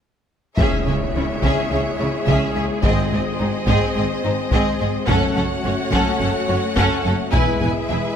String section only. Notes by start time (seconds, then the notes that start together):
0.57 G#3 G#4 C#5 E5
2.82 C5 D#5
5.06 A3 F#4 C#5 F#5
7.33 G#3 G#4 B4 E5